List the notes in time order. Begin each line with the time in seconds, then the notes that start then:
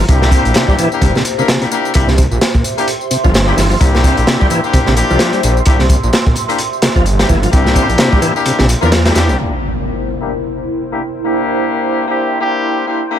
Already playing: G4 C5 E5 A#5
0.09 C2 A#3 D4 E4 G4, kick, closed hi-hat, tambourine
0.22 snare, tambourine
0.31 C4, kick, closed hi-hat, tambourine
0.45 A#1, closed hi-hat, tambourine
0.54 C3, snare, closed hi-hat, tambourine
0.68 G3, kick, tambourine
0.78 E3, closed hi-hat, tambourine
0.91 A#3 D4 E4 G4, tambourine
1.01 G1 C3, kick, closed hi-hat, tambourine
1.15 C3, snare, tambourine
1.25 closed hi-hat, tambourine
1.38 C3 A#3 D4 E4 A#4, tambourine
1.48 C3, snare, closed hi-hat, tambourine
1.61 C3 A#3 D4 E4 G4, closed hi-hat, tambourine
1.71 A#3 D4 E4 G4, tambourine
1.85 tambourine
1.93 C2 A#3 D4 E4 G4 C6, kick, closed hi-hat, tambourine
2.08 C3, snare, tambourine
2.18 C3, kick, closed hi-hat, tambourine
2.31 A#1, tambourine
2.41 snare, closed hi-hat, tambourine
2.54 A#2, kick, tambourine
2.64 closed hi-hat, tambourine
2.77 A#3 D4 E4 G4, closed hi-hat, tambourine
2.88 closed hi-hat, tambourine
3.01 tambourine
3.11 C3, closed hi-hat, tambourine
3.24 G1 F3, kick, tambourine
3.34 snare, closed hi-hat, tambourine
3.47 G3 A#3 D4 E4 G4, tambourine
3.57 G1 E3, snare, open hi-hat, tambourine
3.70 F3, tambourine
3.80 C2 A#3 D4 E4 G4, kick, closed hi-hat, tambourine
3.95 snare, tambourine
4.04 C4, kick, closed hi-hat, tambourine
4.17 A#1, closed hi-hat, tambourine
4.27 C3, snare, closed hi-hat, tambourine
4.40 G3, kick, tambourine
4.50 E3, closed hi-hat, tambourine
4.64 A#3 D4 E4 G4, tambourine
4.73 C3, kick, closed hi-hat, tambourine
4.86 A#1 C3, snare, tambourine
4.97 A#3 D4 E4 G4, closed hi-hat, tambourine
5.10 C2 F3, tambourine
5.19 snare, closed hi-hat, tambourine
5.33 G3, closed hi-hat, tambourine
5.43 A#1 A#3 D4 E4 G4, closed hi-hat, tambourine
5.57 tambourine
5.66 C2 A#3 D4 E4 G4, kick, closed hi-hat, tambourine
5.79 C3, snare, tambourine
5.89 C3, kick, closed hi-hat, tambourine
6.03 A#1, tambourine
6.13 snare, closed hi-hat, tambourine
6.26 A#2, kick, tambourine
6.36 closed hi-hat, tambourine
6.49 A#3 D4 E4 G4, closed hi-hat, tambourine
6.58 closed hi-hat, tambourine
6.73 tambourine
6.82 C3, snare, closed hi-hat, tambourine
6.96 G1 F3, kick, tambourine
7.06 closed hi-hat, tambourine
7.19 G3 A#3 D4 E4 G4, snare, closed hi-hat, tambourine
7.29 G1 E3, kick, tambourine
7.43 F3, closed hi-hat, tambourine
7.52 C2 A#3 D4 E4 G4, kick, closed hi-hat, tambourine
7.66 snare, tambourine
7.75 C4, kick, closed hi-hat, tambourine
7.89 A#1, closed hi-hat, tambourine
7.98 C3, snare, closed hi-hat, tambourine
8.12 G3, kick, tambourine
8.22 E3, closed hi-hat, tambourine
8.36 A#3 D4 E4 G4, tambourine
8.46 C3, closed hi-hat, tambourine
8.59 A#1 C3, snare, tambourine
8.69 closed hi-hat, tambourine
8.82 E2 F3 A#3 D4 E4 A#4, tambourine
8.92 snare, closed hi-hat, tambourine
9.05 G3 A#3 D4 E4 G4, snare, closed hi-hat, tambourine
9.15 E2 A#3 D4 E4 G4, snare, closed hi-hat, tambourine
9.29 C2, tambourine
9.38 A#3 D4 E4 G4 A#4 C5 G5, impact
10.22 A#3 D4 E4 G4
10.92 A#3 D4 E4 G4
11.25 A#3 D4 E4 G4
12.08 A#3 D4 E4 G4
12.41 A#3 D4 E4 G4
12.87 A#3 D4 E4 G4
13.11 A#3 D4 E4 G4